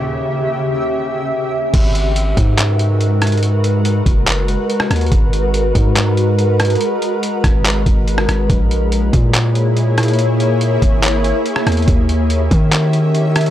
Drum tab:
CC |--------------------------------|x-------------------------------|--------------------------------|--------------------------------|
HH |--------------------------------|x---x---x---x---x---x---x---xxxx|x---x---x---x---x---x---x---xxxx|x---x---x---x---x---x---x---xxxx|
CP |--------------------------------|----------------x---------------|----------------x---------------|----------------x---------------|
SD |--------------------------------|----------------------------r---|--------------------------r-r---|----------------------------r---|
BD |--------------------------------|o-----------o-------------------|------------o-------------------|o-----------o-------------------|

CC |--------------------------------|--------------------------------|--------------------------------|--------------------------------|
HH |x---x---x---x---x---x---x---x---|x---x---x---x---x---x---x---xxxx|x---x---x---x---x---x---x---xxxx|x---x---x---x---x---x---x---xxx-|
CP |----------------x---------------|----------------x---------------|----------------x---------------|----------------x---------------|
SD |------------r-------------r-r---|----------------------------r---|--------------------------r-r---|----------------------------r---|
BD |------------o-------o-----------|o-----------o-------------------|------------o-------------------|o-----------o-------------------|